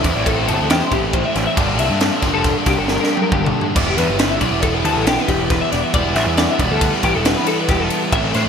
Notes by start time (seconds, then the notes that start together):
0.04 E2 A2 E3 A3 C4 E4 D5, kick, ride
0.16 A1
0.26 A4, kick, ride
0.38 C5
0.47 G1 A4, ride
0.61 D2
0.70 E2 G4, snare, ride
0.82 C5
0.92 A1 G4, kick, ride
1.13 A1 C5, kick, ride
1.25 E5
1.36 A1 D5, snare, ride
1.47 E5
1.56 G1 G2 D3 G3 A#3 D4 D5, kick, ride
1.79 C2 E5, ride
1.90 G2
2.01 D5, snare, ride
2.12 E5
2.21 G1 G2 D3 G3 A#3 D4 D5, kick, snare, ride
2.33 F1 A4
2.44 kick, snare, ride
2.66 C2 G4, kick, snare, ride
2.77 G1 A4
2.88 A#4, snare
3.00 A#4, snare
3.11 G4
3.17 high tom
3.22 A#4
3.32 G1 G4, kick, mid tom
3.44 A4, mid tom
3.61 floor tom
3.76 E1 E3 G3 B3 E4 D5, kick, crash
3.87 G4
3.97 E2 B4, snare, ride
4.09 G1
4.19 B4, snare, ride
4.30 E5
4.41 B1 E3 G3 B3 E4 D5, kick, ride
4.51 E1
4.63 A4, kick, ride
4.74 B4
4.85 D2 A4, ride
4.96 A1
5.07 B1 G4, snare, ride
5.19 B4
5.28 E1 G4, kick, ride
5.50 E1 B4, kick, snare, ride
5.61 E5
5.72 E1 D5, snare, ride
5.82 E5
5.94 E1 E3 G3 B3 E4 D5, kick, ride
6.16 A1 E5, snare, ride
6.26 E2
6.37 D5, snare, ride
6.50 E5
6.59 E1 E3 G3 B3 E4 D5, kick, ride
6.71 D2 A4
6.81 kick, ride
7.03 A1 G4, kick, ride
7.15 E1 A4
7.25 B4, snare, ride
7.37 B4
7.47 A4, ride
7.58 B4
7.69 E1 G4, kick, snare, ride
7.80 A4
7.90 ride
8.12 A1 A2 E3 A3 C4 E4 E5, kick, ride
8.24 A4
8.34 A2 C5, snare, ride
8.45 C2